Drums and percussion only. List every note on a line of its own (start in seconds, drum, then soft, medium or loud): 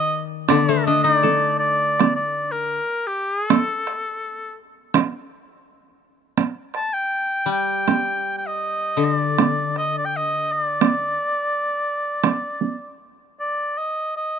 0.49 taiko rim medium
0.49 taiko high medium
1.24 taiko high soft
2.00 taiko rim soft
2.00 taiko high medium
3.50 taiko rim medium
3.50 taiko high medium
3.87 taiko rim soft
4.94 taiko rim medium
4.94 taiko high medium
6.38 taiko rim soft
6.38 taiko high medium
6.74 taiko rim soft
7.88 taiko rim soft
7.88 taiko high soft
9.38 taiko rim soft
9.38 taiko high soft
9.76 taiko rim soft
10.81 taiko rim medium
10.81 taiko high medium
12.24 taiko rim medium
12.24 taiko high medium
12.61 taiko high soft